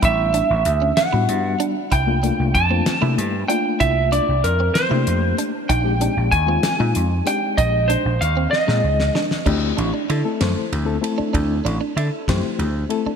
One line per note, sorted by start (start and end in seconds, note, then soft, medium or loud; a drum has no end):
0.00 0.40 A1 medium
0.00 0.52 G3 medium
0.00 0.52 B3 medium
0.00 0.52 D4 medium
0.00 0.52 E4 medium
0.00 0.26 E4 medium
0.00 kick loud
0.00 closed hi-hat medium
0.05 1.01 E5 loud
0.34 0.57 D4 medium
0.34 closed hi-hat medium
0.50 0.63 A1 medium
0.65 0.91 D2 medium
0.65 closed hi-hat medium
0.82 1.05 C#4 medium
0.97 1.64 F#5 medium
0.97 snare loud
0.97 closed hi-hat medium
1.13 1.26 A2 medium
1.13 1.74 G3 medium
1.13 1.74 B3 medium
1.13 1.74 D4 medium
1.13 1.36 E4 medium
1.13 1.74 F#4 medium
1.29 1.54 G2 medium
1.29 closed hi-hat medium
1.60 1.83 D4 medium
1.60 closed hi-hat medium
1.92 2.30 C2 medium
1.92 2.15 E4 medium
1.92 2.54 G5 medium
1.92 kick loud
1.92 closed hi-hat medium
2.07 2.17 A3 medium
2.07 2.17 A#3 medium
2.07 2.18 D4 medium
2.07 2.18 F4 medium
2.23 2.54 A3 medium
2.23 2.54 A#3 medium
2.23 2.46 D4 medium
2.23 2.54 D4 medium
2.23 2.55 F4 medium
2.23 closed hi-hat medium
2.40 2.52 C2 medium
2.54 2.80 F2 medium
2.54 3.23 A5 medium
2.54 kick medium
2.54 closed hi-hat medium
2.70 2.91 A3 medium
2.70 2.91 A#3 medium
2.70 2.94 C4 medium
2.70 2.91 D4 medium
2.70 2.91 F4 medium
2.86 snare loud
2.86 closed hi-hat medium
3.01 3.15 C3 medium
3.01 3.32 A3 medium
3.01 3.32 A#3 medium
3.01 3.32 D4 medium
3.01 3.25 E4 medium
3.01 3.33 E4 medium
3.18 3.43 G2 medium
3.18 closed hi-hat medium
3.23 3.48 G5 medium
3.48 4.30 A3 medium
3.48 4.30 A#3 medium
3.48 3.72 D4 medium
3.48 4.30 D4 medium
3.48 4.30 F4 medium
3.48 3.78 G5 medium
3.48 closed hi-hat medium
3.80 4.18 C2 medium
3.80 4.04 E4 medium
3.80 4.12 E5 loud
3.80 kick loud
3.80 closed hi-hat medium
4.12 4.35 D4 medium
4.12 4.45 D5 medium
4.12 closed hi-hat medium
4.29 4.41 C2 medium
4.44 4.69 F2 loud
4.44 4.74 A#4 medium
4.44 closed hi-hat medium
4.60 4.83 C4 medium
4.74 5.41 C5 medium
4.74 snare loud
4.74 closed hi-hat medium
4.89 5.04 C3 medium
4.89 5.50 A3 medium
4.89 5.51 A#3 medium
4.89 5.51 D4 medium
4.89 5.14 E4 medium
4.89 5.51 G4 medium
5.07 5.32 F2 medium
5.07 closed hi-hat medium
5.38 5.61 D4 medium
5.38 closed hi-hat medium
5.69 6.07 A#1 medium
5.69 5.93 D#4 medium
5.69 6.31 G5 loud
5.69 kick loud
5.69 closed hi-hat medium
5.84 5.95 G#3 medium
5.84 5.95 C4 medium
5.84 5.95 D#4 medium
5.84 5.95 G4 medium
5.99 6.30 G#3 medium
5.99 6.31 C4 medium
5.99 6.24 D4 medium
5.99 6.31 D#4 medium
5.99 6.31 G4 medium
5.99 closed hi-hat medium
6.17 6.29 A#1 medium
6.31 6.57 D#2 medium
6.31 7.27 G#5 medium
6.31 kick medium
6.31 closed hi-hat medium
6.46 6.67 G#3 medium
6.46 6.68 C4 medium
6.46 6.71 C4 medium
6.46 6.68 D#4 medium
6.46 6.68 F4 medium
6.63 snare loud
6.63 closed hi-hat medium
6.79 6.92 A#2 medium
6.79 7.09 G#3 medium
6.79 7.09 C4 medium
6.79 7.10 D#4 medium
6.79 7.03 D#4 medium
6.79 7.10 F4 medium
6.95 7.20 F2 medium
6.95 closed hi-hat medium
7.24 8.06 G#3 medium
7.24 8.06 C4 medium
7.24 7.50 D4 medium
7.24 8.06 D#4 medium
7.24 8.06 G4 medium
7.24 7.59 G5 medium
7.24 closed hi-hat medium
7.57 7.95 A#1 loud
7.57 7.81 D#4 medium
7.57 7.90 D#5 medium
7.57 kick loud
7.57 closed hi-hat medium
7.88 8.12 D4 medium
7.88 8.21 C5 medium
7.88 closed hi-hat medium
8.05 8.17 A#1 medium
8.21 8.46 D#2 medium
8.21 8.50 F5 medium
8.21 closed hi-hat medium
8.37 8.60 C4 medium
8.51 9.18 D#5 medium
8.51 snare medium
8.67 8.80 A#2 medium
8.67 9.27 G#3 medium
8.67 9.28 C4 medium
8.67 9.28 D#4 medium
8.67 8.91 D#4 medium
8.67 9.28 G#4 medium
8.67 snare medium
8.84 9.08 C#2 medium
9.00 snare medium
9.15 9.38 D4 medium
9.15 snare medium
9.31 snare medium
9.45 9.71 D2 medium
9.45 9.96 A3 medium
9.45 9.96 C4 medium
9.45 9.69 D4 medium
9.45 9.96 E4 medium
9.45 9.96 G4 medium
9.45 kick loud
9.45 crash medium
9.77 9.90 A1 medium
9.77 9.89 D4 medium
9.77 ride medium
9.94 10.05 D4 medium
10.10 10.22 D3 medium
10.10 10.32 E4 medium
10.10 10.24 A4 medium
10.10 ride medium
10.24 10.64 A3 medium
10.24 10.64 C4 medium
10.24 10.65 E4 medium
10.24 10.65 A4 medium
10.41 10.53 F#2 medium
10.41 10.71 C5 medium
10.41 snare loud
10.41 ride medium
10.56 muted slap bass stroke soft
10.72 10.97 D2 medium
10.72 ride medium
10.85 10.96 A3 medium
10.85 10.96 C4 medium
10.85 10.96 E4 medium
10.85 10.96 A4 loud
11.01 11.82 A3 medium
11.01 11.82 C4 medium
11.01 11.82 E4 medium
11.01 11.83 A4 medium
11.01 ride medium
11.18 11.29 D4 medium
11.18 muted slap bass stroke soft
11.33 11.59 D2 medium
11.33 11.56 D4 medium
11.33 kick medium
11.33 ride medium
11.65 11.78 A1 medium
11.65 11.76 D4 medium
11.65 ride medium
11.81 11.92 D4 medium
11.96 12.09 D3 medium
11.96 12.20 E4 medium
11.96 12.28 A4 medium
11.96 ride medium
12.28 12.40 F#2 medium
12.28 12.68 A3 medium
12.28 12.68 C4 medium
12.28 12.68 E4 medium
12.28 12.68 G4 medium
12.28 12.59 C5 medium
12.28 kick medium
12.28 snare loud
12.28 ride medium
12.44 muted slap bass stroke soft
12.59 12.84 D2 medium
12.59 ride medium
12.90 13.10 A3 medium
12.90 13.10 C4 medium
12.90 13.10 E4 medium
12.90 13.10 A4 loud
12.90 ride medium
13.06 13.16 D4 medium
13.06 muted slap bass stroke soft